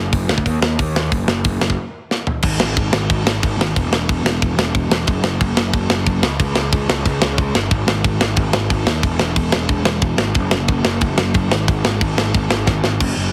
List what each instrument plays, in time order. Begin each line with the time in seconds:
0.13 picked electric bass F#1, kick, open hi-hat
0.28 picked electric bass D2, snare
0.38 kick
0.46 picked electric bass D#2, kick, open hi-hat
0.61 picked electric bass D#2, snare
0.79 picked electric bass D#2, kick, open hi-hat
0.96 snare
1.12 picked electric bass F#1, kick, open hi-hat
1.28 picked electric bass F#1, snare
1.44 picked electric bass F#1, kick, open hi-hat
1.61 picked electric bass F#1, snare
1.70 kick
2.11 snare
2.27 floor tom
2.42 picked electric bass G#1, kick, crash
2.60 picked electric bass G#1, snare
2.77 picked electric bass G#1, kick, crash
2.93 picked electric bass G#1, snare
3.10 picked electric bass G#1, kick, crash
3.24 picked electric bass G#1, snare
3.43 picked electric bass G#1, kick, crash
3.58 picked electric bass G#1, snare
3.76 picked electric bass E1, kick, crash
3.91 picked electric bass E1, snare
4.09 picked electric bass E1, kick, crash
4.23 picked electric bass E1, snare
4.42 picked electric bass E1, kick, crash
4.57 picked electric bass E1, snare
4.75 picked electric bass E1, kick, crash
4.90 picked electric bass E1, snare
5.07 picked electric bass F#1, kick, crash
5.23 picked electric bass F#1, snare
5.41 picked electric bass F#1, kick, crash
5.57 picked electric bass F#1, snare
5.73 picked electric bass F#1, kick, crash
5.90 picked electric bass F#1, snare
6.07 picked electric bass F#1, kick, crash
6.22 picked electric bass C#2, snare
6.40 picked electric bass C#2, kick, crash
6.55 picked electric bass C#2, snare
6.73 picked electric bass C#2, kick, crash
6.89 picked electric bass C#2, snare
7.06 picked electric bass C#2, kick, crash
7.22 picked electric bass C#2, snare
7.38 picked electric bass C#2, kick, crash
7.54 picked electric bass G1, snare
7.71 picked electric bass G#1, kick, crash
7.87 picked electric bass G#1, snare
8.04 picked electric bass G#1, kick, crash
8.21 picked electric bass G#1, snare
8.36 picked electric bass G#1, kick, crash
8.53 picked electric bass G#1, snare
8.70 picked electric bass G#1, kick, crash
8.86 picked electric bass D#2, snare
9.03 picked electric bass E1, kick, crash
9.19 picked electric bass E1, snare
9.36 picked electric bass E1, kick, crash
9.52 picked electric bass E1, snare
9.69 picked electric bass E1, kick, crash
9.84 picked electric bass E1, snare
10.02 picked electric bass E1, kick, crash
10.18 picked electric bass G#1, snare
10.34 picked electric bass F#1, kick, crash
10.51 picked electric bass F#1, snare
10.68 picked electric bass F#1, kick, crash
10.84 picked electric bass F#1, snare
11.01 picked electric bass F#1, kick, crash
11.18 picked electric bass F#1, snare
11.34 picked electric bass F#1, kick, crash
11.51 picked electric bass G#1, snare
11.68 picked electric bass G#1, kick, crash
11.85 picked electric bass G#1, snare
12.01 picked electric bass G#1, kick, crash
12.17 picked electric bass G#1, snare
12.34 picked electric bass G#1, kick, crash
12.50 picked electric bass G#1, snare
12.67 picked electric bass G#1, kick, snare
12.84 picked electric bass G#1, snare
13.00 picked electric bass F#1, kick, crash
13.17 picked electric bass F#1